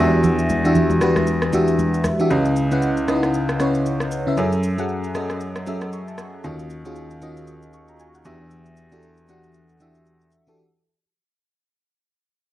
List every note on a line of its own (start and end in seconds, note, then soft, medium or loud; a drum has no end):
0.00 2.00 E2 medium
0.00 0.49 E3 medium
0.00 0.50 D4 medium
0.00 0.50 F#4 medium
0.00 0.50 G4 medium
0.00 0.50 E5 loud
0.00 0.12 F#5 medium
0.24 low conga medium
0.24 shaker medium
0.39 shaker medium
0.50 high conga medium
0.50 shaker medium
0.64 0.95 E3 medium
0.64 0.95 D4 medium
0.64 0.95 F#4 medium
0.64 0.95 G4 medium
0.64 0.95 E5 medium
0.64 shaker medium
0.75 low conga medium
0.75 shaker medium
0.90 high conga medium
0.90 shaker medium
1.01 1.44 E3 medium
1.01 1.44 D4 medium
1.01 1.44 F#4 medium
1.01 1.45 G4 medium
1.01 1.45 B4 medium
1.01 cross-stick medium
1.01 shaker medium
1.16 cross-stick medium
1.16 high conga medium
1.16 shaker medium
1.27 shaker medium
1.42 cross-stick medium
1.42 shaker soft
1.53 2.04 E3 medium
1.53 2.05 D4 medium
1.53 2.05 F#4 medium
1.53 2.05 G4 medium
1.53 2.05 E5 medium
1.53 high conga medium
1.53 shaker medium
1.68 shaker soft
1.79 high conga medium
1.79 shaker medium
1.94 shaker soft
2.04 cross-stick medium
2.04 high conga medium
2.04 shaker loud
2.19 2.28 E3 medium
2.19 2.28 D4 medium
2.19 2.29 F#4 medium
2.19 2.29 G4 medium
2.19 2.29 E5 loud
2.19 shaker soft
2.30 4.33 C#2 medium
2.30 2.62 C#3 medium
2.30 2.62 C#4 medium
2.30 2.62 E4 medium
2.30 2.63 B4 medium
2.30 2.63 D#5 medium
2.30 shaker medium
2.45 shaker medium
2.56 shaker medium
2.71 3.01 C#3 medium
2.71 3.02 C#4 medium
2.71 3.02 E4 medium
2.71 3.02 B4 medium
2.71 3.02 F#5 loud
2.71 shaker medium
2.82 shaker medium
2.97 shaker medium
3.08 3.51 C#3 medium
3.08 3.51 C#4 medium
3.08 3.15 D#4 medium
3.08 3.52 B4 medium
3.08 3.52 D#5 medium
3.08 cross-stick medium
3.08 shaker medium
3.15 3.54 E4 medium
3.23 cross-stick medium
3.23 shaker soft
3.34 shaker medium
3.49 cross-stick medium
3.49 shaker soft
3.60 4.11 C#3 medium
3.60 4.12 C#4 medium
3.60 4.12 E4 medium
3.60 4.12 B4 medium
3.60 4.12 C#5 loud
3.60 cross-stick medium
3.60 shaker medium
3.75 shaker medium
3.86 shaker medium
4.00 cross-stick medium
4.00 shaker soft
4.11 shaker loud
4.26 4.35 C#3 medium
4.26 4.35 C#4 medium
4.26 4.35 E4 medium
4.26 4.36 B4 medium
4.26 4.36 E5 loud
4.37 6.40 F#2 medium
4.37 4.69 F#3 medium
4.37 4.69 C#4 medium
4.37 4.69 G#4 medium
4.37 4.70 A4 medium
4.37 4.70 E5 medium
4.37 shaker medium
4.52 shaker medium
4.63 shaker medium
4.78 5.08 F#3 medium
4.78 5.08 C#4 medium
4.78 5.09 G#4 medium
4.78 5.09 A4 medium
4.78 5.09 F#5 loud
4.78 shaker medium
4.89 shaker medium
5.04 shaker medium
5.15 5.58 F#3 medium
5.15 5.58 C#4 medium
5.15 5.58 G#4 medium
5.15 5.58 A4 medium
5.15 5.59 D#5 loud
5.15 cross-stick medium
5.15 shaker medium
5.30 cross-stick medium
5.30 shaker soft
5.41 shaker medium
5.56 cross-stick medium
5.56 shaker soft
5.66 6.18 F#3 medium
5.66 6.18 C#4 medium
5.66 6.19 G#4 medium
5.66 6.19 A4 medium
5.66 6.19 E5 loud
5.66 shaker medium
5.81 cross-stick medium
5.81 shaker soft
5.93 6.07 C#6 medium
5.93 shaker medium
6.08 6.18 A5 medium
6.08 shaker soft
6.18 6.33 G#5 medium
6.18 cross-stick medium
6.18 shaker loud
6.34 6.58 F#5 medium
6.44 8.21 D#2 medium
6.44 6.76 D#3 medium
6.44 6.76 C#4 medium
6.44 6.76 F4 medium
6.44 6.76 F#4 medium
6.44 6.77 D#5 medium
6.44 shaker medium
6.59 shaker medium
6.70 shaker medium
6.85 7.15 D#3 medium
6.85 7.15 C#4 medium
6.85 7.15 F4 medium
6.85 7.16 F#4 medium
6.85 7.16 G#4 medium
6.85 shaker medium
6.96 shaker medium
7.11 shaker medium
7.21 7.65 D#3 medium
7.21 7.65 C#4 medium
7.21 7.65 F4 medium
7.21 7.65 F#4 medium
7.21 7.65 D#5 loud
7.21 shaker medium
7.37 shaker soft
7.47 shaker medium
7.62 shaker soft
7.73 7.88 C#6 medium
7.73 shaker loud
7.88 7.99 A#5 medium
7.88 shaker soft
7.99 8.14 G#5 medium
7.99 shaker medium
8.15 8.39 F#5 medium
8.15 shaker soft
8.25 10.28 E2 medium
8.25 8.77 E3 medium
8.25 8.77 D4 medium
8.25 8.77 F#4 medium
8.25 8.77 G4 medium
8.25 8.77 E5 loud
8.25 shaker loud
8.51 shaker medium
8.66 shaker medium
8.77 shaker medium
8.92 9.22 E3 medium
8.92 9.22 D4 medium
8.92 9.22 F#4 medium
8.92 9.23 G4 medium
8.92 9.23 A4 medium
8.92 shaker medium
9.03 shaker medium
9.18 shaker medium
9.29 9.72 E3 medium
9.29 9.72 D4 medium
9.29 9.72 F#4 medium
9.29 9.72 G4 medium
9.29 9.72 F#5 medium
9.29 shaker medium
9.44 shaker soft
9.54 shaker medium
9.69 shaker soft
9.80 10.32 E3 medium
9.80 10.32 D4 medium
9.80 10.32 F#4 medium
9.80 10.33 G4 medium
9.80 10.33 E5 loud
9.80 shaker medium
9.95 shaker soft
10.06 shaker medium
10.21 shaker soft
10.32 shaker loud
10.47 10.56 E3 medium
10.47 10.56 D4 medium
10.47 10.56 F#4 medium
10.47 10.56 G4 medium
10.47 10.57 A4 loud
10.47 shaker soft